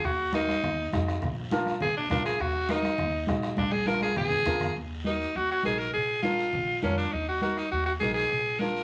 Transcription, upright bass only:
0.05 D#2
0.63 D#2
0.93 F2
1.23 A#1
1.81 A#1
2.11 A#1
2.40 D#2
2.99 D#2
3.28 A#1
3.58 A#1
4.17 A#1
4.46 F2
4.76 D#2
5.36 D#2
5.65 A#1
5.95 A#1
6.54 A#1
6.84 F2
7.13 D#2
7.72 D#2
8.01 A#1
8.30 A#1

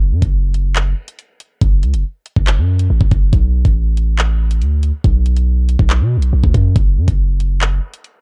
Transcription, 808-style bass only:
Already playing: F#1
0.11 F#2
0.22 F#1
1.62 F#1
1.83 C#2
1.94 F#1
2.36 F#1
2.58 F#2
2.90 A1
3.01 F#1
3.11 F#1
3.33 B1
3.65 A1
4.61 D2
5.04 B1
5.79 B1
6.01 B2
6.17 B1
6.33 B1
6.44 D2
6.54 F#2
6.76 F#1
6.97 F#2
7.08 F#1

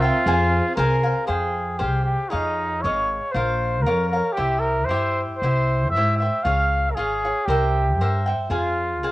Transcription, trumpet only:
0.00 F4
0.75 A#4
1.26 G#4
1.78 G4
2.04 G4
2.29 D#4
2.81 C#5
3.31 C5
3.82 A#4
4.09 A#4
4.33 G4
4.60 A#4
4.85 C5
5.37 C5
5.90 E5
6.16 E5
6.43 F5
6.90 A#4
6.95 G#4
7.46 G4
8.50 F4

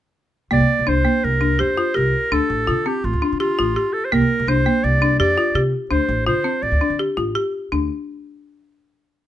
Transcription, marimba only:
0.51 A#3
0.87 D4
1.05 A#3
1.41 D4
1.59 G4
1.78 F4
1.94 G4
2.32 D4
2.67 F4
2.86 C4
3.22 D4
3.40 G4
3.59 F4
3.76 G4
4.12 A#3
4.48 D4
4.66 A#3
5.02 D4
5.20 G4
5.38 F4
5.55 G4
5.91 D4
6.27 F4
6.44 C4
6.81 D4
6.99 G4
7.17 F4
7.35 G4
7.72 D4

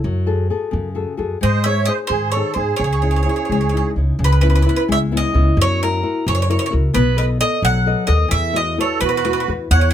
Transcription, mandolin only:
1.43 D#5
1.64 E5
1.85 D#5
2.07 C5
2.32 C#5
2.54 C5
2.76 C#5
2.84 C#5
2.93 C#5
3.02 C#5
3.11 C#5
3.16 C#5
3.23 C#5
3.29 C#5
3.36 C#5
3.45 C#5
3.52 C#5
3.61 C#5
3.69 C#5
3.77 C#5
4.24 B4
4.32 B4
4.41 B4
4.50 B4
4.55 B4
4.62 B4
4.69 B4
4.76 B4
4.92 E5
5.17 D#5
5.62 C#5
5.83 A#4
6.28 C#5
6.35 C#5
6.42 C#5
6.50 C#5
6.59 C#5
6.66 C#5
6.94 B4
7.18 B4
7.41 D#5
7.65 F#5
8.07 D#5
8.31 E5
8.56 D#5
8.81 C#5
9.01 B4
9.09 B4
9.17 B4
9.25 B4
9.33 B4
9.40 B4
9.71 F#5
9.81 F#5
9.91 F#5

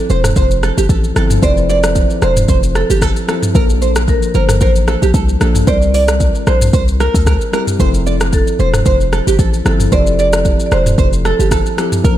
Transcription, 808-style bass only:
0.10 E1
0.36 F1
0.78 G1
0.89 A1
1.16 G1
1.43 F1
2.22 E1
2.49 F1
2.90 G1
3.55 A#1
4.35 G1
4.61 A1
5.02 A#1
5.14 C2
5.41 A#1
5.67 C2
6.47 A#1
6.73 C2
7.14 D2
7.80 F1
8.59 E1
8.86 F1
9.27 G1
9.39 A1
9.66 G1
9.92 F1
10.72 E1
10.98 F1
11.39 G1
12.04 A#1

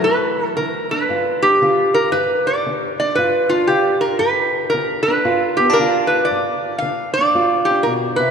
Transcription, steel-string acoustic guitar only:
0.06 G2
0.58 D3
0.92 D4
1.09 G2 F4
1.44 D4
1.62 D3 F4
2.13 G2
2.66 D3
3.01 D4
3.18 G2 F4
3.52 D4
3.69 D3 F4
4.20 G2
4.74 D3
5.08 D4
5.25 G2 F4
5.59 B3
5.70 D4
5.79 D3 F4
6.31 G2
6.82 D3
7.19 D4
7.35 G2 F4
7.71 D4
7.86 B2
8.19 C3

